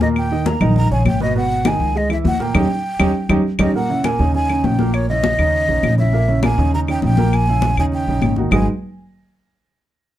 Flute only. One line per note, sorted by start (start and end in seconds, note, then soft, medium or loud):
0.02 0.08 D#5 medium
0.18 0.49 G5 loud
0.48 0.77 A#5 medium
0.77 0.91 A#5 loud
0.92 1.06 G#5 medium
1.07 1.21 G5 medium
1.23 1.36 D#5 medium
1.37 1.69 F#5 loud
1.67 1.99 G#5 medium
1.97 2.11 D#5 medium
2.12 2.18 E5 medium
2.27 2.44 F#5 medium
2.42 3.37 G5 medium
3.60 3.74 D#5 medium
3.75 4.06 F#5 medium
4.05 4.35 G#5 medium
4.35 4.66 G#5 medium
4.65 4.96 G5 medium
4.94 5.09 C#5 medium
5.09 5.95 D#5 loud
5.99 6.40 E5 medium
6.44 6.72 G#5 medium
6.74 6.80 A#5 loud
6.90 7.03 G5 medium
7.05 7.36 G5 loud
7.34 7.78 G#5 loud
7.79 7.85 G#5 medium
7.94 8.35 G5 medium
8.53 8.66 G#5 medium